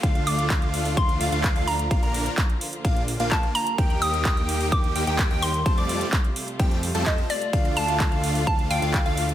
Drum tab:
HH |xxoxxxooxxoxxxox|xxoxxxoxxxoxxxox|xxoxxxooxxoxxxox|xxoxxxoxxxoxxxox|
CP |----x-------x---|----x-------x---|----x-------x---|----x-------x---|
BD |o---o---o---o---|o---o---o---o---|o---o---o---o---|o---o---o---o---|

HH |xxoxxxooxxoxxxox|
CP |----x-------x---|
BD |o---o---o---o---|